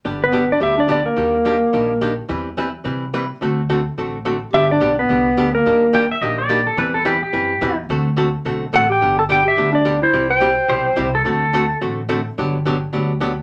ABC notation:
X:1
M:4/4
L:1/8
Q:"Swing" 1/4=214
K:G
V:1 name="Electric slide guitar"
z B2 d e d d _B- | _B6- B z | z8 | z8 |
e d2 B4 _B- | _B3 z4 z | z8 | z6 f g- |
g a g e2 d2 c- | c g6 z | z8 | z8 |]
V:2 name="Pedal steel guitar"
z8 | z8 | z8 | z8 |
z8 | z2 g e _e d2 A | B A G G4 z | z8 |
z8 | z4 c c2 A | A4 z4 | z8 |]
V:3 name="Clarinet"
z B,2 D G D D _B,- | _B,6- B, z | z8 | z8 |
G D2 B,4 _B,- | _B,3 z4 z | z8 | z6 A G- |
G A G G2 D2 E- | E c6 z | z8 | z8 |]
V:4 name="Hollow-body jazz guitar"
[D,G,B,DG] z [D,G,B,DG] z [D,G,B,DG] z [D,G,B,DG] z | [_E,G,_B,DG] z [E,G,B,DG] z [E,G,B,DG] z [E,G,B,DG] z | [E,G,CEB] z [E,G,CEB] z [E,G,CEB] z [E,G,CEB] z | [D,A,CFA] z [D,A,CFA] z [D,A,CFA] z [D,A,CFA] z |
[D,G,B,DG] z [D,G,B,DG] z [D,G,B,DG] z [D,G,B,DG] z | [_E,G,_B,DG] z [E,G,B,DG] z [E,G,B,DG] z [E,G,B,DG] z | [E,G,CEB] z [E,G,CEB] z [E,G,CEB] z [E,G,CEB] z | [D,A,CFA] z [D,A,CFA] z [D,A,CFA] z [D,A,CFA] z |
[D,G,B,DG] z [D,G,B,DG] z [D,G,B,DG] z [D,G,B,DG] z | [C,G,CEG] z [C,G,CEG] z [C,G,CEG] z [C,G,CEG] z | [D,A,CFA] z [D,A,CFA] z [D,A,CFA] z [D,A,CFA] z | [D,F,B,DG] z [D,F,B,DG] z [D,F,B,DG] z [D,F,B,DG] z |]
V:5 name="Upright bass" clef=bass
G,,,4 D,,4 | _E,,4 _B,,,4 | E,,4 C,4 | D,,4 A,,,4 |
G,,,2 B,,,2 C,,2 D,,2 | _E,,4 _B,,,4 | E,,4 F,,2 E,,2 | D,,4 B,,,2 A,,,2 |
G,,,4 D,,4 | C,,4 B,,,2 C,,2 | D,,4 A,,,4 | G,,,4 D,,4 |]